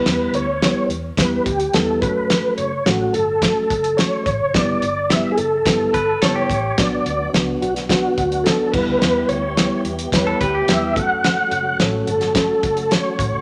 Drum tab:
CC |----------------|----------------|----------------|--------------x-|
HH |x-x-x-x-x-xxx-x-|x-x-x-x-x-xxx-x-|x-x-x-x-x-x-x-x-|x-x-x-xxx-xxx---|
SD |o---o---o---o---|o---o---o---o---|o---o---o---o---|o---o--oo---o---|
BD |--------o-o---o-|--------o-o---o-|o-------o-o---o-|o-------o-o---o-|

CC |----------------|----------------|
HH |x-x-x-xxx-x-x-x-|x-x-x-xxx-xxx-x-|
SD |o---o---o---o---|o---o--oo---o---|
BD |--------o-o---o-|--------o-o---o-|